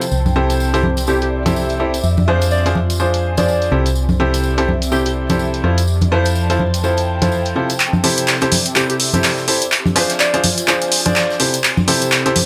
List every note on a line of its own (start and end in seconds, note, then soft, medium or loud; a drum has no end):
0.00 0.12 F3 medium
0.00 0.90 C5 medium
0.00 0.89 G5 medium
0.00 0.82 A5 medium
0.00 closed hi-hat medium
0.00 tambourine medium
0.11 2.02 C2 medium
0.11 2.72 C4 medium
0.11 tambourine medium
0.16 2.04 G4 medium
0.26 tambourine soft
0.26 high conga medium
0.36 0.70 C3 medium
0.36 0.70 E4 medium
0.36 0.71 G4 medium
0.36 0.70 A4 medium
0.36 0.70 C5 loud
0.45 2.72 D5 medium
0.50 closed hi-hat medium
0.50 tambourine medium
0.60 tambourine medium
0.74 0.84 C3 medium
0.74 0.84 E4 medium
0.74 0.84 G4 medium
0.74 0.84 A4 medium
0.74 0.84 C5 loud
0.74 closed hi-hat soft
0.74 tambourine soft
0.83 high conga medium
0.97 2.72 E5 medium
0.97 closed hi-hat medium
0.97 tambourine medium
1.07 1.43 C3 medium
1.07 1.42 E4 medium
1.07 1.43 G4 medium
1.07 1.17 G4 medium
1.07 1.43 A4 medium
1.07 1.43 C5 medium
1.07 tambourine medium
1.21 1.28 G4 medium
1.21 closed hi-hat soft
1.21 tambourine soft
1.46 1.77 C3 medium
1.46 1.77 E4 medium
1.46 1.77 G4 medium
1.46 1.77 A4 medium
1.46 1.77 C5 medium
1.46 closed hi-hat medium
1.46 tambourine medium
1.46 high conga medium
1.56 tambourine medium
1.69 closed hi-hat soft
1.69 tambourine soft
1.80 1.94 E4 medium
1.80 1.94 G4 medium
1.80 1.94 A4 medium
1.80 1.94 C5 medium
1.94 closed hi-hat medium
1.94 tambourine medium
2.04 3.70 F2 medium
2.04 3.72 F4 medium
2.04 tambourine medium
2.17 tambourine soft
2.17 high conga medium
2.22 4.49 C5 medium
2.28 2.62 F3 medium
2.28 2.62 D4 medium
2.28 2.62 F4 medium
2.28 2.62 G#4 medium
2.28 2.62 C5 loud
2.28 2.44 C5 medium
2.41 closed hi-hat medium
2.41 tambourine medium
2.51 2.68 D5 medium
2.51 tambourine medium
2.66 2.76 F3 loud
2.66 2.76 D4 medium
2.66 2.76 F4 medium
2.66 2.76 G#4 medium
2.66 2.76 C5 loud
2.66 closed hi-hat soft
2.66 tambourine soft
2.75 high conga medium
2.80 3.72 G#5 medium
2.90 closed hi-hat medium
2.90 tambourine medium
3.00 3.34 F3 medium
3.00 3.34 D4 medium
3.00 3.34 F4 medium
3.00 3.34 G#4 medium
3.00 3.35 C5 medium
3.00 tambourine medium
3.14 closed hi-hat medium
3.14 tambourine soft
3.37 3.69 F3 medium
3.37 3.69 D4 medium
3.37 3.69 F4 medium
3.37 3.69 G#4 medium
3.37 3.69 C5 medium
3.37 3.77 D5 medium
3.37 closed hi-hat medium
3.37 tambourine medium
3.37 high conga medium
3.48 tambourine medium
3.62 closed hi-hat soft
3.62 tambourine soft
3.72 5.62 C2 medium
3.72 3.86 C3 medium
3.72 6.42 C4 medium
3.72 3.86 E4 medium
3.72 3.86 G4 medium
3.72 3.86 A4 medium
3.72 3.86 C5 medium
3.86 closed hi-hat medium
3.86 tambourine medium
3.91 6.52 G4 medium
3.95 tambourine medium
4.09 tambourine soft
4.09 high conga medium
4.16 4.54 E4 medium
4.16 4.54 G4 medium
4.16 4.54 C5 loud
4.16 6.24 D5 medium
4.20 4.54 C3 medium
4.20 4.54 A4 medium
4.20 6.52 E5 medium
4.34 closed hi-hat medium
4.34 tambourine medium
4.43 tambourine medium
4.58 4.68 C3 loud
4.58 4.68 E4 medium
4.58 4.68 G4 medium
4.58 4.68 A4 medium
4.58 4.68 C5 loud
4.58 closed hi-hat soft
4.58 tambourine soft
4.68 high conga medium
4.82 closed hi-hat medium
4.82 tambourine medium
4.92 5.26 C3 medium
4.92 5.26 E4 medium
4.92 5.01 G4 medium
4.92 5.26 G4 medium
4.92 5.26 A4 medium
4.92 5.26 C5 medium
4.92 tambourine medium
5.05 5.12 G4 medium
5.05 closed hi-hat medium
5.05 tambourine soft
5.29 5.61 C3 medium
5.29 5.61 E4 medium
5.29 5.61 G4 medium
5.29 5.61 A4 medium
5.29 5.61 C5 medium
5.29 closed hi-hat medium
5.29 tambourine medium
5.29 high conga medium
5.39 tambourine medium
5.54 closed hi-hat soft
5.54 tambourine soft
5.64 7.54 F2 medium
5.64 7.80 F3 medium
5.64 5.78 F3 medium
5.64 5.78 E4 medium
5.64 5.78 F4 medium
5.64 5.78 A4 medium
5.64 5.78 C5 medium
5.78 8.57 C5 medium
5.78 closed hi-hat medium
5.78 tambourine medium
5.84 8.57 A5 medium
5.84 tambourine medium
6.01 closed hi-hat soft
6.01 tambourine soft
6.01 high conga medium
6.12 6.46 F3 medium
6.12 6.46 E4 medium
6.12 6.46 F4 medium
6.12 6.46 A4 medium
6.12 6.46 C5 loud
6.12 6.28 C5 medium
6.25 closed hi-hat medium
6.25 tambourine medium
6.33 8.58 G5 medium
6.33 tambourine medium
6.50 6.60 F3 loud
6.50 6.60 E4 medium
6.50 6.60 F4 medium
6.50 6.60 A4 medium
6.50 6.60 C5 loud
6.50 closed hi-hat soft
6.50 tambourine soft
6.60 high conga medium
6.74 closed hi-hat medium
6.74 tambourine medium
6.84 7.18 F3 medium
6.84 7.18 E4 medium
6.84 7.18 F4 medium
6.84 7.18 A4 medium
6.84 7.18 C5 medium
6.84 tambourine medium
6.97 closed hi-hat medium
6.97 tambourine soft
7.22 7.53 F3 medium
7.22 7.53 E4 medium
7.22 7.53 F4 medium
7.22 7.53 A4 medium
7.22 7.53 C5 loud
7.22 closed hi-hat medium
7.22 tambourine medium
7.22 high conga medium
7.32 tambourine medium
7.45 closed hi-hat soft
7.45 tambourine soft
7.56 7.70 C3 medium
7.56 7.70 E4 medium
7.56 7.70 F4 medium
7.56 7.70 A4 medium
7.56 7.70 C5 medium
7.70 closed hi-hat medium
7.70 tambourine medium
7.80 10.40 C4 medium
7.80 clap soft
7.80 closed hi-hat medium
7.80 tambourine medium
7.93 tambourine soft
7.93 high conga medium
8.02 8.38 C3 medium
8.02 8.38 E4 medium
8.02 9.72 G4 medium
8.02 8.38 G4 medium
8.02 8.38 A4 medium
8.02 8.38 C5 loud
8.02 10.40 E5 medium
8.02 closed hi-hat medium
8.02 open hi-hat loud
8.08 10.40 D5 medium
8.17 closed hi-hat medium
8.17 closed hi-hat soft
8.17 tambourine medium
8.27 snare loud
8.27 clap soft
8.27 closed hi-hat medium
8.27 tambourine medium
8.41 8.52 C3 loud
8.41 8.52 E4 medium
8.41 8.52 G4 medium
8.41 8.52 A4 medium
8.41 8.52 C5 loud
8.41 snare soft
8.41 closed hi-hat medium
8.41 tambourine soft
8.52 closed hi-hat medium
8.52 open hi-hat loud
8.52 high conga medium
8.66 closed hi-hat medium
8.66 tambourine medium
8.75 9.10 C3 medium
8.75 9.10 E4 medium
8.75 9.10 G4 medium
8.75 8.85 G4 medium
8.75 9.10 A4 medium
8.75 9.10 C5 medium
8.75 clap soft
8.75 closed hi-hat medium
8.75 tambourine medium
8.90 8.96 G4 medium
8.90 closed hi-hat medium
8.90 tambourine soft
9.00 closed hi-hat medium
9.00 open hi-hat loud
9.13 9.45 C3 medium
9.13 9.45 E4 medium
9.13 9.45 G4 medium
9.13 9.45 A4 medium
9.13 9.45 C5 loud
9.13 closed hi-hat medium
9.13 tambourine medium
9.13 high conga medium
9.23 snare loud
9.23 clap soft
9.23 closed hi-hat medium
9.23 open hi-hat medium
9.23 tambourine medium
9.37 snare soft
9.37 tambourine soft
9.47 9.62 E4 medium
9.47 9.62 G4 medium
9.47 9.62 A4 medium
9.47 9.62 C5 medium
9.47 closed hi-hat medium
9.47 open hi-hat loud
9.62 closed hi-hat medium
9.62 closed hi-hat soft
9.62 tambourine medium
9.72 11.40 F4 medium
9.72 clap medium
9.72 closed hi-hat medium
9.72 tambourine medium
9.86 closed hi-hat soft
9.86 tambourine soft
9.86 high conga medium
9.95 10.30 F3 loud
9.95 10.30 D4 medium
9.95 10.30 F4 medium
9.95 10.30 G#4 medium
9.95 10.30 C5 loud
9.95 10.12 C5 medium
9.95 snare soft
9.95 closed hi-hat medium
9.95 open hi-hat loud
10.01 12.18 C5 medium
10.01 11.40 G#5 medium
10.10 snare soft
10.10 closed hi-hat medium
10.10 tambourine medium
10.19 10.36 D5 medium
10.19 snare loud
10.19 clap medium
10.19 closed hi-hat medium
10.19 tambourine medium
10.34 10.44 F3 medium
10.34 10.44 D4 medium
10.34 10.44 F4 medium
10.34 10.44 G#4 medium
10.34 10.44 C5 loud
10.34 closed hi-hat medium
10.34 tambourine soft
10.43 closed hi-hat medium
10.43 open hi-hat loud
10.43 high conga medium
10.58 closed hi-hat medium
10.58 tambourine medium
10.68 11.02 F3 medium
10.68 11.02 D4 medium
10.68 11.02 F4 medium
10.68 11.02 G#4 medium
10.68 11.02 C5 medium
10.68 clap medium
10.68 closed hi-hat medium
10.68 tambourine medium
10.81 closed hi-hat medium
10.81 tambourine soft
10.92 closed hi-hat medium
10.92 open hi-hat loud
11.06 11.37 F3 medium
11.06 11.37 D4 medium
11.06 11.37 F4 medium
11.06 11.37 G#4 medium
11.06 11.37 C5 medium
11.06 11.45 D5 medium
11.06 closed hi-hat medium
11.06 tambourine medium
11.06 high conga medium
11.16 snare loud
11.16 clap medium
11.16 closed hi-hat medium
11.16 tambourine medium
11.30 snare soft
11.30 tambourine soft
11.40 11.54 C3 medium
11.40 12.46 C4 medium
11.40 11.54 E4 medium
11.40 11.54 G4 medium
11.40 11.54 A4 medium
11.40 11.54 C5 medium
11.40 closed hi-hat medium
11.40 open hi-hat loud
11.47 12.46 G4 medium
11.54 closed hi-hat medium
11.54 tambourine medium
11.64 clap medium
11.64 closed hi-hat medium
11.64 tambourine medium
11.77 tambourine soft
11.77 high conga medium
11.88 12.22 C3 loud
11.88 12.22 E4 medium
11.88 12.22 G4 medium
11.88 12.22 A4 medium
11.88 12.22 C5 loud
11.88 closed hi-hat medium
11.88 open hi-hat loud
12.01 closed hi-hat soft
12.01 closed hi-hat medium
12.01 tambourine medium
12.11 12.46 D5 medium
12.11 snare loud
12.11 clap medium
12.11 closed hi-hat medium
12.11 tambourine medium
12.26 12.36 C3 loud
12.26 12.36 E4 medium
12.26 12.36 G4 medium
12.26 12.36 A4 medium
12.26 12.36 C5 loud
12.26 12.46 E5 medium
12.26 snare soft
12.26 closed hi-hat soft
12.26 tambourine soft
12.36 closed hi-hat medium
12.36 open hi-hat loud
12.36 high conga medium